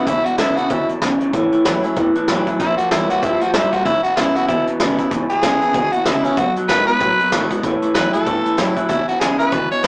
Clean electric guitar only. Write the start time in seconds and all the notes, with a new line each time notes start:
0.06 E2 B2
0.26 E2 B2
0.38 E2 C#3
0.57 E2 C#3
0.70 E2 B2
0.89 E2 B2
1.02 E2 C#3
1.20 E2 C#3
1.33 A2 E3
1.52 A2 E3
1.65 A2 F#3
1.84 A2 F#3
1.97 A2 E3
2.16 A2 E3
2.29 A2 F#3
2.47 A2 F#3
2.60 A#2 F3
2.79 A#2 F3
2.91 A#2 G3
3.10 A#2 G3
3.23 A#2 F3
3.42 A#2 F3
3.54 A#2 G3
3.73 A#2 G3
3.86 E2 B2
4.04 E2 B2
4.18 E2 C#3
4.36 E2 C#3
4.49 E2 B2
4.68 E2 B2
4.80 E2 C#3
4.99 E2 C#3
5.11 E2 B2
5.30 E2 B2
5.43 E2 C#3
5.62 E2 C#3
5.75 E2 B2
5.93 E2 B2
6.07 E2 C#3
6.25 E2 C#3
6.37 B2 F#3
6.57 B2 F#3
6.70 B2 G#3
6.89 B2 G#3
7.02 B2 F#3
7.21 B2 F#3
7.32 B2 G#3
7.51 B2 G#3
7.64 A2 E3
7.82 A2 E3
7.95 A2 F#3
8.14 A2 F#3
8.26 A2 E3
8.45 A2 E3
8.58 A2 F#3
8.76 A2 F#3
8.89 E2 B2
9.08 E2 B2
9.21 E2 C#3
9.39 E2 C#3
9.51 E2 B2
9.70 E2 B2
9.83 E2 C#3